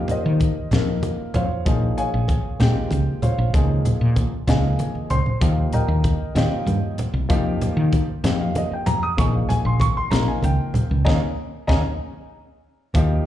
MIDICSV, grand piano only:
0, 0, Header, 1, 2, 480
1, 0, Start_track
1, 0, Tempo, 626959
1, 1272, Time_signature, 6, 3, 24, 8
1, 10152, End_track
2, 0, Start_track
2, 0, Title_t, "Grand piano"
2, 0, Program_c, 0, 0
2, 0, Note_on_c, 0, 53, 76
2, 0, Note_on_c, 0, 58, 72
2, 0, Note_on_c, 0, 63, 64
2, 0, Note_on_c, 0, 67, 86
2, 77, Note_off_c, 0, 63, 0
2, 85, Note_on_c, 0, 75, 79
2, 87, Note_on_c, 0, 72, 67
2, 88, Note_on_c, 0, 63, 62
2, 88, Note_on_c, 0, 70, 63
2, 403, Note_off_c, 0, 53, 0
2, 406, Note_off_c, 0, 58, 0
2, 410, Note_off_c, 0, 67, 0
2, 528, Note_off_c, 0, 75, 0
2, 529, Note_off_c, 0, 72, 0
2, 530, Note_off_c, 0, 63, 0
2, 530, Note_off_c, 0, 70, 0
2, 559, Note_on_c, 0, 53, 59
2, 563, Note_on_c, 0, 58, 60
2, 565, Note_on_c, 0, 63, 58
2, 572, Note_on_c, 0, 70, 72
2, 1035, Note_on_c, 0, 65, 67
2, 1036, Note_on_c, 0, 77, 91
2, 1038, Note_on_c, 0, 72, 70
2, 1038, Note_on_c, 0, 73, 70
2, 1128, Note_off_c, 0, 53, 0
2, 1130, Note_off_c, 0, 58, 0
2, 1131, Note_off_c, 0, 63, 0
2, 1135, Note_off_c, 0, 70, 0
2, 1265, Note_on_c, 0, 53, 78
2, 1270, Note_on_c, 0, 58, 66
2, 1272, Note_on_c, 0, 63, 67
2, 1278, Note_on_c, 0, 68, 81
2, 1483, Note_off_c, 0, 65, 0
2, 1483, Note_off_c, 0, 77, 0
2, 1484, Note_off_c, 0, 72, 0
2, 1484, Note_off_c, 0, 73, 0
2, 1502, Note_off_c, 0, 68, 0
2, 1513, Note_on_c, 0, 68, 72
2, 1513, Note_on_c, 0, 77, 73
2, 1513, Note_on_c, 0, 80, 99
2, 1517, Note_on_c, 0, 73, 75
2, 1841, Note_off_c, 0, 53, 0
2, 1843, Note_off_c, 0, 58, 0
2, 1844, Note_off_c, 0, 63, 0
2, 1961, Note_off_c, 0, 77, 0
2, 1961, Note_off_c, 0, 80, 0
2, 1962, Note_off_c, 0, 68, 0
2, 1963, Note_off_c, 0, 73, 0
2, 1986, Note_on_c, 0, 53, 60
2, 1988, Note_on_c, 0, 58, 58
2, 1992, Note_on_c, 0, 67, 72
2, 1992, Note_on_c, 0, 79, 84
2, 1995, Note_on_c, 0, 63, 58
2, 1997, Note_on_c, 0, 56, 69
2, 2441, Note_off_c, 0, 67, 0
2, 2441, Note_off_c, 0, 79, 0
2, 2470, Note_on_c, 0, 65, 67
2, 2470, Note_on_c, 0, 73, 68
2, 2470, Note_on_c, 0, 77, 84
2, 2472, Note_on_c, 0, 72, 69
2, 2561, Note_off_c, 0, 53, 0
2, 2562, Note_off_c, 0, 58, 0
2, 2566, Note_off_c, 0, 63, 0
2, 2567, Note_off_c, 0, 56, 0
2, 2705, Note_on_c, 0, 53, 79
2, 2710, Note_on_c, 0, 58, 66
2, 2713, Note_on_c, 0, 63, 72
2, 2718, Note_on_c, 0, 68, 85
2, 2919, Note_off_c, 0, 73, 0
2, 2919, Note_off_c, 0, 77, 0
2, 2920, Note_off_c, 0, 65, 0
2, 2921, Note_off_c, 0, 72, 0
2, 3280, Note_off_c, 0, 53, 0
2, 3283, Note_off_c, 0, 58, 0
2, 3284, Note_off_c, 0, 63, 0
2, 3287, Note_off_c, 0, 68, 0
2, 3423, Note_on_c, 0, 53, 65
2, 3427, Note_on_c, 0, 58, 58
2, 3434, Note_on_c, 0, 63, 59
2, 3436, Note_on_c, 0, 68, 67
2, 3437, Note_on_c, 0, 75, 65
2, 3437, Note_on_c, 0, 77, 69
2, 3438, Note_on_c, 0, 80, 84
2, 3883, Note_off_c, 0, 75, 0
2, 3883, Note_off_c, 0, 77, 0
2, 3884, Note_off_c, 0, 80, 0
2, 3908, Note_on_c, 0, 84, 107
2, 3910, Note_on_c, 0, 72, 80
2, 3999, Note_off_c, 0, 53, 0
2, 4001, Note_off_c, 0, 58, 0
2, 4004, Note_off_c, 0, 63, 0
2, 4006, Note_off_c, 0, 68, 0
2, 4141, Note_on_c, 0, 53, 78
2, 4143, Note_on_c, 0, 58, 72
2, 4147, Note_on_c, 0, 63, 68
2, 4149, Note_on_c, 0, 67, 82
2, 4358, Note_off_c, 0, 84, 0
2, 4359, Note_off_c, 0, 72, 0
2, 4388, Note_on_c, 0, 82, 84
2, 4393, Note_on_c, 0, 79, 68
2, 4395, Note_on_c, 0, 75, 70
2, 4397, Note_on_c, 0, 70, 73
2, 4718, Note_off_c, 0, 53, 0
2, 4719, Note_off_c, 0, 58, 0
2, 4721, Note_off_c, 0, 63, 0
2, 4722, Note_off_c, 0, 67, 0
2, 4838, Note_off_c, 0, 82, 0
2, 4841, Note_off_c, 0, 79, 0
2, 4842, Note_off_c, 0, 75, 0
2, 4843, Note_off_c, 0, 70, 0
2, 4860, Note_on_c, 0, 53, 63
2, 4867, Note_on_c, 0, 58, 61
2, 4868, Note_on_c, 0, 63, 57
2, 4871, Note_on_c, 0, 65, 71
2, 4873, Note_on_c, 0, 79, 82
2, 4875, Note_on_c, 0, 73, 65
2, 4876, Note_on_c, 0, 67, 67
2, 4876, Note_on_c, 0, 75, 69
2, 5321, Note_off_c, 0, 79, 0
2, 5322, Note_off_c, 0, 73, 0
2, 5322, Note_off_c, 0, 75, 0
2, 5323, Note_off_c, 0, 67, 0
2, 5438, Note_off_c, 0, 53, 0
2, 5441, Note_off_c, 0, 58, 0
2, 5441, Note_off_c, 0, 63, 0
2, 5443, Note_off_c, 0, 65, 0
2, 5579, Note_on_c, 0, 53, 96
2, 5587, Note_on_c, 0, 58, 82
2, 5588, Note_on_c, 0, 63, 88
2, 5594, Note_on_c, 0, 67, 100
2, 6157, Note_off_c, 0, 53, 0
2, 6161, Note_off_c, 0, 58, 0
2, 6162, Note_off_c, 0, 63, 0
2, 6164, Note_off_c, 0, 67, 0
2, 6306, Note_on_c, 0, 53, 68
2, 6311, Note_on_c, 0, 58, 59
2, 6316, Note_on_c, 0, 63, 57
2, 6319, Note_on_c, 0, 67, 68
2, 6436, Note_on_c, 0, 77, 81
2, 6550, Note_off_c, 0, 77, 0
2, 6567, Note_on_c, 0, 75, 72
2, 6675, Note_off_c, 0, 75, 0
2, 6686, Note_on_c, 0, 79, 72
2, 6784, Note_on_c, 0, 82, 107
2, 6795, Note_off_c, 0, 79, 0
2, 6881, Note_off_c, 0, 53, 0
2, 6883, Note_off_c, 0, 58, 0
2, 6886, Note_off_c, 0, 63, 0
2, 6887, Note_off_c, 0, 67, 0
2, 6904, Note_off_c, 0, 82, 0
2, 6912, Note_on_c, 0, 87, 95
2, 7022, Note_on_c, 0, 53, 74
2, 7028, Note_off_c, 0, 87, 0
2, 7029, Note_on_c, 0, 58, 70
2, 7031, Note_on_c, 0, 85, 82
2, 7032, Note_on_c, 0, 63, 69
2, 7036, Note_on_c, 0, 68, 88
2, 7147, Note_off_c, 0, 85, 0
2, 7157, Note_on_c, 0, 77, 62
2, 7263, Note_on_c, 0, 80, 104
2, 7270, Note_off_c, 0, 77, 0
2, 7383, Note_off_c, 0, 80, 0
2, 7398, Note_on_c, 0, 84, 87
2, 7507, Note_on_c, 0, 85, 103
2, 7511, Note_off_c, 0, 84, 0
2, 7599, Note_off_c, 0, 53, 0
2, 7602, Note_off_c, 0, 58, 0
2, 7604, Note_off_c, 0, 63, 0
2, 7606, Note_off_c, 0, 68, 0
2, 7625, Note_off_c, 0, 85, 0
2, 7633, Note_on_c, 0, 84, 97
2, 7737, Note_on_c, 0, 82, 100
2, 7745, Note_on_c, 0, 53, 67
2, 7749, Note_off_c, 0, 84, 0
2, 7751, Note_on_c, 0, 58, 62
2, 7754, Note_on_c, 0, 63, 59
2, 7759, Note_on_c, 0, 70, 80
2, 7860, Note_off_c, 0, 82, 0
2, 7872, Note_on_c, 0, 80, 84
2, 7988, Note_off_c, 0, 80, 0
2, 7993, Note_on_c, 0, 79, 81
2, 8321, Note_off_c, 0, 53, 0
2, 8324, Note_off_c, 0, 58, 0
2, 8325, Note_off_c, 0, 63, 0
2, 8328, Note_off_c, 0, 70, 0
2, 8442, Note_off_c, 0, 79, 0
2, 8457, Note_on_c, 0, 75, 88
2, 8459, Note_on_c, 0, 80, 86
2, 8459, Note_on_c, 0, 82, 88
2, 8475, Note_on_c, 0, 61, 105
2, 8477, Note_on_c, 0, 58, 97
2, 8478, Note_on_c, 0, 63, 92
2, 8540, Note_off_c, 0, 75, 0
2, 8541, Note_off_c, 0, 80, 0
2, 8541, Note_off_c, 0, 82, 0
2, 8550, Note_off_c, 0, 61, 0
2, 8552, Note_off_c, 0, 58, 0
2, 8552, Note_off_c, 0, 63, 0
2, 8938, Note_on_c, 0, 82, 101
2, 8939, Note_on_c, 0, 75, 105
2, 8940, Note_on_c, 0, 80, 97
2, 8950, Note_on_c, 0, 61, 97
2, 8951, Note_on_c, 0, 58, 86
2, 8953, Note_on_c, 0, 63, 97
2, 9020, Note_off_c, 0, 82, 0
2, 9021, Note_off_c, 0, 75, 0
2, 9022, Note_off_c, 0, 80, 0
2, 9028, Note_off_c, 0, 61, 0
2, 9029, Note_off_c, 0, 58, 0
2, 9029, Note_off_c, 0, 63, 0
2, 9916, Note_on_c, 0, 53, 89
2, 9917, Note_on_c, 0, 58, 83
2, 9925, Note_on_c, 0, 63, 85
2, 9927, Note_on_c, 0, 67, 95
2, 10152, Note_off_c, 0, 53, 0
2, 10152, Note_off_c, 0, 58, 0
2, 10152, Note_off_c, 0, 63, 0
2, 10152, Note_off_c, 0, 67, 0
2, 10152, End_track
0, 0, End_of_file